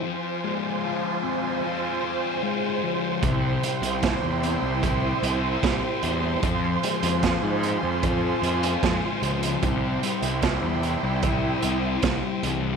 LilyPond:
<<
  \new Staff \with { instrumentName = "String section" } { \time 4/4 \tempo 4 = 75 << { <c'' c'''>1~ | <c'' c'''>1~ | <c'' c'''>1~ | <c'' c'''>1 | } \\ { <f' aes''>1 | <e' g''>1 | <f' aes''>1 | <e' g''>1 | } >> }
  \new Staff \with { instrumentName = "Distorted electric guitar" } { \time 4/4 f8 aes8 f'8 c'8 f'8 c'8 aes8 f8 | c8 g8 e'8 c'8 e'8 c'8 g8 e8 | f8 aes8 f'8 c'8 f'8 c'8 aes8 f8 | c8 g8 e'8 c'8 e'8 c'8 g8 e8 | }
  \new Staff \with { instrumentName = "Picked electric bass" } { \clef bass \time 4/4 r1 | c,8 r16 c,8 e,8 c,8. c,8 c,16 r16 e,8 | f,8 r16 f,8 aes,8 f,8. f,8 f,16 r16 des,8 | c,8 r16 c,8 e,8 c,8. c,8 c,16 r16 c,8 | }
  \new DrumStaff \with { instrumentName = "Drums" } \drummode { \time 4/4 r4 r4 r4 r4 | <hh bd>8 hh16 hh16 <hh bd sn>8 hh8 <hh bd>8 hh8 <hh bd sn>8 hh8 | <hh bd>8 hh16 hh16 <hh bd sn>8 hh8 <hh bd>8 hh16 hh16 <hh bd sn>8 hh16 hh16 | <hh bd>8 hh16 hh16 <hh bd sn>8 hh8 <hh bd>8 hh8 <hh bd sn>8 hh8 | }
>>